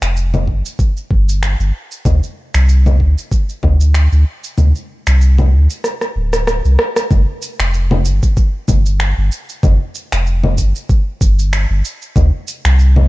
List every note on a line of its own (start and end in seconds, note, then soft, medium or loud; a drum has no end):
0.02 0.49 F1 medium
0.02 finger snap medium
0.02 shaker medium
0.17 shaker medium
0.34 low conga medium
0.34 shaker soft
0.47 0.62 G1 medium
0.47 kick medium
0.66 shaker medium
0.79 kick loud
0.79 shaker soft
0.97 shaker soft
1.10 1.55 G1 medium
1.10 kick loud
1.29 shaker medium
1.43 finger snap medium
1.43 shaker medium
1.59 1.72 G1 loud
1.59 shaker soft
1.91 shaker medium
2.05 2.20 D2 medium
2.05 kick loud
2.05 low conga medium
2.05 shaker soft
2.23 shaker soft
2.54 3.01 C2 medium
2.54 finger snap medium
2.54 shaker medium
2.69 shaker soft
2.86 low conga medium
2.86 shaker soft
3.00 3.15 D2 medium
3.00 kick medium
3.18 shaker medium
3.32 kick loud
3.32 shaker medium
3.49 shaker soft
3.63 4.08 D2 medium
3.63 kick medium
3.63 low conga medium
3.81 shaker medium
3.94 finger snap medium
3.94 shaker medium
4.12 4.24 D2 loud
4.12 shaker soft
4.44 shaker medium
4.58 4.73 D2 loud
4.58 low conga medium
4.58 shaker soft
4.75 shaker soft
5.07 5.54 C2 medium
5.07 finger snap medium
5.07 shaker medium
5.21 shaker soft
5.38 low conga medium
5.38 shaker soft
5.53 5.67 D2 medium
5.70 shaker medium
5.84 cross-stick medium
5.84 shaker medium
6.01 cross-stick medium
6.01 shaker soft
6.16 6.61 D1 loud
6.33 cross-stick medium
6.33 shaker medium
6.47 cross-stick medium
6.47 shaker medium
6.65 6.77 C2 medium
6.65 shaker soft
6.79 cross-stick medium
6.96 cross-stick medium
6.96 shaker medium
7.11 7.25 G1 medium
7.11 kick loud
7.11 low conga medium
7.11 shaker soft
7.42 shaker medium
7.59 8.07 F1 medium
7.59 finger snap medium
7.59 shaker soft
7.74 shaker soft
7.91 low conga medium
8.05 8.20 G1 medium
8.05 shaker medium
8.23 kick loud
8.23 shaker soft
8.37 kick loud
8.37 shaker soft
8.68 9.13 G1 medium
8.68 kick medium
8.68 low conga medium
8.68 shaker medium
8.86 shaker soft
9.00 finger snap medium
9.00 shaker soft
9.18 9.30 G1 loud
9.32 shaker medium
9.49 shaker soft
9.63 9.78 G1 medium
9.63 kick loud
9.63 low conga medium
9.63 shaker soft
9.95 shaker medium
10.12 10.59 F1 medium
10.12 finger snap medium
10.12 shaker soft
10.27 shaker soft
10.44 low conga medium
10.58 10.73 G1 medium
10.58 kick medium
10.58 shaker medium
10.75 shaker soft
10.89 kick loud
10.89 shaker soft
11.21 11.66 G1 medium
11.21 kick loud
11.21 shaker medium
11.39 shaker soft
11.53 finger snap medium
11.53 shaker soft
11.70 11.82 G1 loud
11.85 shaker medium
12.02 shaker soft
12.16 12.31 D2 loud
12.16 kick loud
12.16 low conga medium
12.16 shaker soft
12.48 shaker medium
12.65 13.08 C2 medium
12.65 finger snap medium
12.65 shaker soft
12.79 shaker soft
12.96 low conga medium